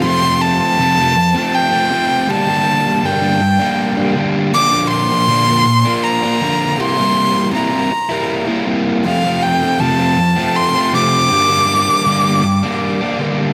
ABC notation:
X:1
M:3/4
L:1/16
Q:1/4=80
K:F
V:1 name="Violin"
c'2 a6 g4 | a4 g6 z2 | d'2 c'6 b4 | c'4 b6 z2 |
f2 g2 a4 c'2 d'2- | d'8- d'2 z2 |]
V:2 name="Overdriven electric guitar"
[F,,C,F,A,C] [F,A,C]3 [F,,C,F,A,C] [F,A,C]2 [F,A,C]2 [F,A,C] [C,F,A,C]2 | [G,,D,G,B,D] [G,B,D]3 [G,,D,G,B,D] [G,B,D]2 [G,B,D]2 [G,B,D] [D,G,B,D]2 | [B,,D,F,B,D] [F,B,D]3 [B,,D,F,B,D] [F,B,D]2 [F,B,D]2 [F,B,D] [D,F,B,D]2 | [C,G,B,E] [G,B,E]3 [C,G,B,E] [G,B,E]2 [G,B,E]2 [G,B,E] [C,G,B,E]2 |
[F,,C,F,A,C] [F,A,C]3 [F,,C,F,A,C] [F,A,C]2 [F,A,C]2 [F,A,C] [C,F,A,C]2 | [G,,D,G,B,D] [G,B,D]3 [G,,D,G,B,D] [G,B,D]2 [G,B,D]2 [G,B,D] [D,G,B,D]2 |]